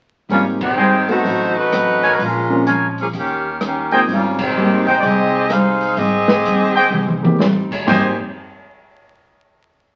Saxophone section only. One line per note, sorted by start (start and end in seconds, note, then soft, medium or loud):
0.32 0.45 G3 medium
0.32 0.45 A#3 medium
0.32 0.45 C#4 medium
0.32 0.46 F4 medium
0.62 1.05 D#3 medium
0.62 1.06 G#3 medium
0.62 1.05 C4 medium
0.62 1.06 G4 medium
1.11 1.57 A3 medium
1.11 1.56 D#4 medium
1.11 1.57 F#4 medium
1.11 1.57 C5 loud
1.58 2.20 A3 medium
1.58 2.20 D#4 medium
1.58 2.20 F#4 medium
1.58 2.20 B4 medium
2.23 2.69 G#3 medium
2.23 2.68 C#4 medium
2.23 2.68 F4 medium
2.23 2.69 A#4 medium
3.00 3.07 F3 medium
3.00 3.07 A#3 medium
3.00 3.08 C#4 medium
3.00 3.07 G#4 medium
3.18 3.60 D#3 medium
3.18 3.60 A#3 medium
3.18 3.60 C#4 medium
3.18 3.60 G4 medium
3.66 4.00 D#3 medium
3.66 4.00 A#3 medium
3.66 4.00 C#4 medium
3.66 4.00 G4 medium
4.12 4.39 G3 medium
4.12 4.39 A#3 medium
4.12 4.39 C#4 medium
4.12 4.39 F4 medium
4.42 4.88 D#3 medium
4.42 4.87 G#3 medium
4.42 4.88 C4 medium
4.42 4.88 G4 medium
4.89 4.98 G#3 medium
4.89 4.98 D#4 medium
4.89 4.99 G4 medium
4.89 4.99 C5 medium
5.00 5.51 C4 medium
5.00 5.50 G#4 medium
5.00 5.04 D5 medium
5.00 5.50 D#5 loud
5.04 5.51 G4 medium
5.51 5.98 D#4 medium
5.51 5.97 G#4 medium
5.51 5.98 C5 medium
5.51 5.98 F5 loud
5.97 7.39 C4 medium
5.97 7.39 G4 medium
5.97 7.40 G#4 medium
5.97 7.40 D#5 medium
7.86 8.16 D#4 medium
7.86 8.15 G4 medium
7.86 8.16 C5 medium
7.86 8.15 G#5 medium